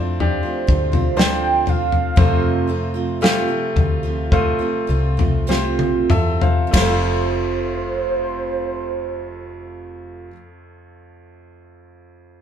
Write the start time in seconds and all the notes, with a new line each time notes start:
Already playing: F2 A2 F3 C4 D4 F4 G4 C5
0.00 A3
0.20 F3 D4 G4 C5, floor tom
0.43 A3 C4 F4
0.67 D2 F3 A3 C4 F4, kick
0.92 A3 C4 F4, floor tom
1.17 D3 F3 A3 C4 D4 F4 C5 G5, snare
1.66 F3 A3 C4 F4 F5, floor tom
1.92 floor tom
2.16 F2 C3 F3 A3 C4 F4 C5, kick, floor tom
2.67 F3 A3 C4 F4
2.94 F3 A3 C4 F4
3.21 F2 C3 F3 A3 C4 F4 G4, snare
3.48 F3 A3 C4 F4
3.76 D2, floor tom
4.03 F3 A3 C4 F4
4.32 A3 F4 C5, kick, floor tom
4.59 F3 A3 C4 F4
4.87 C2 F3 A3 C4 F4
5.17 F3 A3 C4 F4, floor tom
5.47 F2 C3 F3 A3 C4 F4 G4 C5, snare
5.79 high tom
6.10 E2 A3 C4 F4 A4 E5, mid tom
6.41 C5 F5, floor tom
6.67 F2
6.71 F1 F2 C3 A3 F4 C5, kick, ride bell
6.75 F3, snare
6.81 A3 C4
6.89 F4